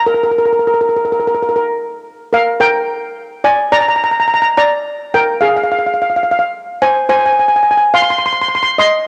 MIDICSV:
0, 0, Header, 1, 2, 480
1, 0, Start_track
1, 0, Tempo, 561272
1, 63, Time_signature, 4, 2, 24, 8
1, 7757, End_track
2, 0, Start_track
2, 0, Title_t, "Steel pan"
2, 0, Program_c, 0, 114
2, 55, Note_on_c, 0, 70, 67
2, 113, Note_off_c, 0, 70, 0
2, 123, Note_on_c, 0, 70, 47
2, 188, Note_off_c, 0, 70, 0
2, 199, Note_on_c, 0, 70, 54
2, 256, Note_off_c, 0, 70, 0
2, 267, Note_on_c, 0, 70, 42
2, 318, Note_off_c, 0, 70, 0
2, 328, Note_on_c, 0, 70, 57
2, 378, Note_off_c, 0, 70, 0
2, 388, Note_on_c, 0, 70, 46
2, 439, Note_off_c, 0, 70, 0
2, 450, Note_on_c, 0, 70, 47
2, 497, Note_off_c, 0, 70, 0
2, 507, Note_on_c, 0, 70, 43
2, 564, Note_off_c, 0, 70, 0
2, 574, Note_on_c, 0, 70, 51
2, 621, Note_off_c, 0, 70, 0
2, 632, Note_on_c, 0, 70, 47
2, 681, Note_off_c, 0, 70, 0
2, 692, Note_on_c, 0, 70, 46
2, 749, Note_off_c, 0, 70, 0
2, 760, Note_on_c, 0, 70, 42
2, 813, Note_off_c, 0, 70, 0
2, 824, Note_on_c, 0, 70, 47
2, 886, Note_off_c, 0, 70, 0
2, 896, Note_on_c, 0, 70, 43
2, 948, Note_off_c, 0, 70, 0
2, 959, Note_on_c, 0, 70, 50
2, 1013, Note_off_c, 0, 70, 0
2, 1023, Note_on_c, 0, 70, 44
2, 1078, Note_off_c, 0, 70, 0
2, 1088, Note_on_c, 0, 70, 53
2, 1140, Note_off_c, 0, 70, 0
2, 1150, Note_on_c, 0, 70, 43
2, 1208, Note_off_c, 0, 70, 0
2, 1218, Note_on_c, 0, 70, 50
2, 1262, Note_off_c, 0, 70, 0
2, 1273, Note_on_c, 0, 70, 51
2, 1324, Note_off_c, 0, 70, 0
2, 1334, Note_on_c, 0, 70, 57
2, 1403, Note_off_c, 0, 70, 0
2, 1990, Note_on_c, 0, 70, 65
2, 2001, Note_on_c, 0, 77, 85
2, 2212, Note_off_c, 0, 70, 0
2, 2225, Note_on_c, 0, 70, 80
2, 2229, Note_on_c, 0, 79, 97
2, 2241, Note_off_c, 0, 77, 0
2, 2912, Note_off_c, 0, 70, 0
2, 2945, Note_on_c, 0, 74, 78
2, 2948, Note_on_c, 0, 80, 96
2, 2969, Note_off_c, 0, 79, 0
2, 3053, Note_off_c, 0, 74, 0
2, 3055, Note_off_c, 0, 80, 0
2, 3183, Note_on_c, 0, 74, 87
2, 3184, Note_on_c, 0, 82, 107
2, 3247, Note_off_c, 0, 74, 0
2, 3247, Note_off_c, 0, 82, 0
2, 3257, Note_on_c, 0, 82, 72
2, 3313, Note_off_c, 0, 82, 0
2, 3323, Note_on_c, 0, 82, 73
2, 3378, Note_off_c, 0, 82, 0
2, 3388, Note_on_c, 0, 82, 62
2, 3443, Note_off_c, 0, 82, 0
2, 3454, Note_on_c, 0, 82, 72
2, 3508, Note_off_c, 0, 82, 0
2, 3519, Note_on_c, 0, 82, 64
2, 3581, Note_off_c, 0, 82, 0
2, 3590, Note_on_c, 0, 82, 72
2, 3646, Note_off_c, 0, 82, 0
2, 3658, Note_on_c, 0, 82, 64
2, 3700, Note_off_c, 0, 82, 0
2, 3710, Note_on_c, 0, 82, 86
2, 3768, Note_off_c, 0, 82, 0
2, 3779, Note_on_c, 0, 82, 75
2, 3838, Note_off_c, 0, 82, 0
2, 3911, Note_on_c, 0, 82, 92
2, 3914, Note_on_c, 0, 74, 78
2, 4356, Note_off_c, 0, 74, 0
2, 4396, Note_on_c, 0, 70, 71
2, 4396, Note_on_c, 0, 79, 88
2, 4402, Note_off_c, 0, 82, 0
2, 4614, Note_off_c, 0, 70, 0
2, 4622, Note_on_c, 0, 77, 75
2, 4632, Note_on_c, 0, 68, 65
2, 4638, Note_off_c, 0, 79, 0
2, 4680, Note_off_c, 0, 77, 0
2, 4690, Note_on_c, 0, 77, 50
2, 4691, Note_off_c, 0, 68, 0
2, 4748, Note_off_c, 0, 77, 0
2, 4759, Note_on_c, 0, 77, 58
2, 4808, Note_off_c, 0, 77, 0
2, 4818, Note_on_c, 0, 77, 53
2, 4877, Note_off_c, 0, 77, 0
2, 4887, Note_on_c, 0, 77, 59
2, 4937, Note_off_c, 0, 77, 0
2, 4948, Note_on_c, 0, 77, 50
2, 5005, Note_off_c, 0, 77, 0
2, 5015, Note_on_c, 0, 77, 51
2, 5067, Note_off_c, 0, 77, 0
2, 5077, Note_on_c, 0, 77, 45
2, 5136, Note_off_c, 0, 77, 0
2, 5145, Note_on_c, 0, 77, 54
2, 5205, Note_off_c, 0, 77, 0
2, 5214, Note_on_c, 0, 77, 48
2, 5260, Note_off_c, 0, 77, 0
2, 5270, Note_on_c, 0, 77, 55
2, 5319, Note_off_c, 0, 77, 0
2, 5329, Note_on_c, 0, 77, 47
2, 5389, Note_off_c, 0, 77, 0
2, 5399, Note_on_c, 0, 77, 64
2, 5453, Note_off_c, 0, 77, 0
2, 5464, Note_on_c, 0, 77, 60
2, 5522, Note_off_c, 0, 77, 0
2, 5831, Note_on_c, 0, 80, 90
2, 5832, Note_on_c, 0, 72, 67
2, 6051, Note_off_c, 0, 72, 0
2, 6057, Note_off_c, 0, 80, 0
2, 6064, Note_on_c, 0, 72, 77
2, 6067, Note_on_c, 0, 80, 91
2, 6126, Note_off_c, 0, 72, 0
2, 6134, Note_off_c, 0, 80, 0
2, 6148, Note_on_c, 0, 80, 65
2, 6197, Note_off_c, 0, 80, 0
2, 6207, Note_on_c, 0, 80, 74
2, 6255, Note_off_c, 0, 80, 0
2, 6265, Note_on_c, 0, 80, 57
2, 6313, Note_off_c, 0, 80, 0
2, 6323, Note_on_c, 0, 80, 66
2, 6391, Note_off_c, 0, 80, 0
2, 6400, Note_on_c, 0, 80, 62
2, 6455, Note_off_c, 0, 80, 0
2, 6465, Note_on_c, 0, 80, 64
2, 6515, Note_off_c, 0, 80, 0
2, 6525, Note_on_c, 0, 80, 58
2, 6582, Note_off_c, 0, 80, 0
2, 6593, Note_on_c, 0, 80, 70
2, 6639, Note_off_c, 0, 80, 0
2, 6649, Note_on_c, 0, 80, 64
2, 6713, Note_off_c, 0, 80, 0
2, 6789, Note_on_c, 0, 77, 86
2, 6796, Note_on_c, 0, 84, 100
2, 6849, Note_off_c, 0, 77, 0
2, 6851, Note_off_c, 0, 84, 0
2, 6861, Note_on_c, 0, 84, 74
2, 6920, Note_off_c, 0, 84, 0
2, 6930, Note_on_c, 0, 84, 75
2, 6987, Note_off_c, 0, 84, 0
2, 7001, Note_on_c, 0, 84, 64
2, 7054, Note_off_c, 0, 84, 0
2, 7064, Note_on_c, 0, 84, 75
2, 7112, Note_off_c, 0, 84, 0
2, 7122, Note_on_c, 0, 84, 57
2, 7182, Note_off_c, 0, 84, 0
2, 7197, Note_on_c, 0, 84, 71
2, 7246, Note_off_c, 0, 84, 0
2, 7256, Note_on_c, 0, 84, 59
2, 7302, Note_off_c, 0, 84, 0
2, 7312, Note_on_c, 0, 84, 74
2, 7368, Note_off_c, 0, 84, 0
2, 7379, Note_on_c, 0, 84, 80
2, 7437, Note_off_c, 0, 84, 0
2, 7513, Note_on_c, 0, 75, 82
2, 7522, Note_on_c, 0, 84, 98
2, 7732, Note_off_c, 0, 75, 0
2, 7757, Note_off_c, 0, 84, 0
2, 7757, End_track
0, 0, End_of_file